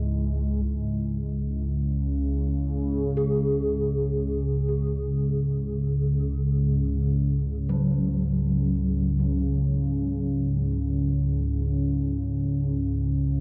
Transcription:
0.00 0.65 C#2 medium
0.00 0.64 G#2 medium
0.00 13.40 G#3 medium
0.00 13.40 E4 medium
0.63 13.40 C#2 medium
0.63 13.40 G#2 medium
0.63 13.40 C#3 medium
3.17 9.19 G#4 medium
7.69 13.40 F#3 medium

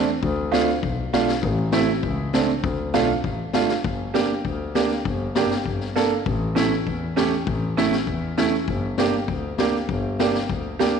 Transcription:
0.23 0.59 D2 loud
0.23 kick medium
0.51 0.67 A3 medium
0.51 0.68 D4 medium
0.51 0.67 F4 medium
0.51 snare medium
0.69 snare soft
0.82 1.19 B1 medium
0.82 kick medium
1.13 1.28 A3 medium
1.13 1.28 D4 medium
1.13 1.28 F4 medium
1.13 snare medium
1.28 snare medium
1.42 1.79 A1 loud
1.42 kick medium
1.72 1.88 A3 medium
1.72 1.88 C4 medium
1.72 1.88 E4 medium
1.72 snare loud
1.88 snare soft
2.03 2.39 C#2 loud
2.03 kick medium
2.33 2.49 A3 medium
2.33 2.49 C4 medium
2.33 2.49 D4 medium
2.33 snare medium
2.63 2.81 D2 loud
2.63 kick medium
2.94 3.21 B1 medium
2.94 3.09 A3 medium
2.94 3.09 D4 medium
2.94 3.09 F4 medium
2.94 snare medium
3.24 3.51 A1 medium
3.24 kick medium
3.53 3.81 G#1 medium
3.53 3.69 A3 medium
3.53 3.70 D4 medium
3.53 3.70 F4 medium
3.53 snare medium
3.69 snare medium
3.84 4.20 G1 medium
3.84 kick medium
4.14 4.30 A#3 medium
4.14 4.29 D4 medium
4.14 4.29 G4 medium
4.14 snare medium
4.44 4.81 D2 medium
4.44 kick medium
4.75 4.91 A#3 medium
4.75 4.90 D4 medium
4.75 4.90 G4 medium
4.75 snare medium
4.90 snare soft
5.05 5.41 G1 loud
5.05 kick medium
5.35 5.51 A#3 medium
5.35 5.51 D4 medium
5.35 5.51 G4 medium
5.35 snare medium
5.51 snare soft
5.65 6.02 G1 medium
5.65 kick medium
5.81 snare soft
5.96 6.11 A#3 medium
5.96 6.11 D4 medium
5.96 6.11 A4 medium
5.96 snare medium
6.26 6.62 A1 loud
6.26 kick medium
6.55 6.71 A3 medium
6.55 6.71 C#4 medium
6.55 6.71 E4 medium
6.55 snare medium
6.86 7.23 E2 medium
6.86 kick soft
7.16 7.32 A3 medium
7.16 7.32 C#4 medium
7.16 7.32 G4 medium
7.16 snare medium
7.33 snare soft
7.47 7.83 A1 loud
7.47 kick medium
7.77 7.93 A3 medium
7.77 7.92 C#4 medium
7.77 7.92 E4 medium
7.77 snare medium
7.92 snare medium
8.07 8.43 E2 medium
8.07 kick medium
8.38 8.53 A3 medium
8.38 8.53 C#4 medium
8.38 8.53 E4 medium
8.38 snare medium
8.53 snare soft
8.68 9.04 G1 loud
8.68 kick medium
8.98 9.14 A#3 medium
8.98 9.14 D4 medium
8.98 9.14 G4 medium
8.98 snare medium
9.28 9.64 D2 medium
9.28 kick medium
9.58 9.74 A#3 medium
9.58 9.74 D4 medium
9.58 9.74 G4 medium
9.58 snare medium
9.73 snare soft
9.88 10.25 G1 loud
9.88 kick medium
10.19 10.35 A#3 medium
10.19 10.35 D4 medium
10.19 10.35 G4 medium
10.19 snare medium
10.35 snare medium
10.49 10.86 D2 medium
10.49 kick medium
10.79 10.95 A#3 medium
10.79 10.95 D4 medium
10.79 10.95 G4 medium
10.79 snare medium

